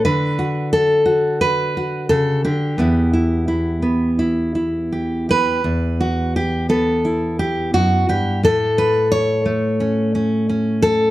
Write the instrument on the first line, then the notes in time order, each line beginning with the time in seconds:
steel-string acoustic guitar
0.05 D3 B4
0.39 F#4
0.73 A4
1.06 F#4
1.41 B4
1.77 F#4
2.09 C#3 A4
2.45 D3 G4
2.78 E2 B3 E4
3.13 E4
3.48 E4
3.82 B3
4.19 E4
4.55 E4
4.92 G4
5.29 G4 B4
5.64 E2
6.01 F#4
6.36 G4
6.69 B3 A4
7.05 E4
7.39 G4
7.74 F#2 F#4
8.09 G2 G4
8.43 A2 A4
8.78 B4
9.12 C#5
9.46 A3
9.80 C#4
10.15 C#4
10.49 C#4
10.82 A4